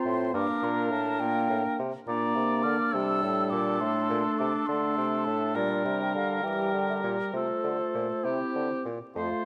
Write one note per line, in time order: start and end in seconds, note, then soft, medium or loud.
0.00 0.36 C4 soft
0.00 0.34 F4 soft
0.00 0.34 C5 soft
0.05 0.34 A2 soft
0.05 0.34 C6 medium
0.34 0.47 G2 soft
0.34 1.04 A#3 soft
0.34 1.77 D4 soft
0.34 1.77 A#4 soft
0.34 0.66 D6 medium
0.63 0.93 A#2 soft
0.63 0.90 A#5 medium
0.91 1.23 A2 soft
0.91 1.21 A5 medium
1.20 1.49 A#2 soft
1.20 1.79 A#3 soft
1.20 1.80 G5 medium
1.50 1.63 A2 soft
1.79 1.92 C3 soft
2.07 2.35 A#2 medium
2.07 2.96 A#3 medium
2.07 6.41 D4 soft
2.07 2.95 D5 soft
2.07 2.65 A#5 medium
2.35 2.64 C3 soft
2.63 2.78 D3 soft
2.63 2.93 F6 medium
2.91 3.22 C3 medium
2.91 3.82 G3 soft
2.91 4.68 A4 medium
2.91 3.52 E6 medium
3.23 3.51 A2 soft
3.50 3.80 A#2 soft
3.50 3.82 D6 medium
3.81 4.09 A2 soft
3.81 4.67 A3 soft
3.81 4.40 C6 medium
4.10 4.23 A#2 soft
4.39 4.53 C3 soft
4.39 4.68 D6 medium
4.67 4.97 D3 soft
4.67 5.58 A3 soft
4.67 5.57 A4 soft
4.67 5.26 C6 medium
4.98 5.26 C3 soft
5.25 5.55 A2 soft
5.25 5.57 A5 medium
5.55 5.84 A#2 soft
5.55 6.43 G3 soft
5.55 7.34 A#4 soft
5.55 6.00 D5 medium
5.85 6.14 C3 soft
6.02 6.15 G5 soft
6.15 6.46 D3 soft
6.15 6.45 F5 soft
6.43 6.73 E3 soft
6.43 7.32 G3 soft
6.43 7.32 G4 soft
6.43 6.89 G5 soft
6.74 7.03 D3 soft
6.89 6.95 E5 soft
7.01 7.17 A#2 soft
7.01 7.09 D5 soft
7.33 7.47 C3 soft
7.33 8.26 A3 soft
7.33 8.25 F4 soft
7.33 8.26 A4 soft
7.33 8.82 C5 soft
7.64 7.78 D3 soft
7.95 8.09 A#2 soft
8.24 8.39 C3 soft
8.24 8.86 C4 soft
8.24 8.85 E4 soft
8.24 8.85 G4 soft
8.55 8.69 D3 soft
8.85 8.99 A#2 soft
9.15 9.29 F2 soft
9.15 9.45 A3 soft
9.15 9.44 F4 soft
9.15 9.45 C5 soft
9.15 9.45 F5 soft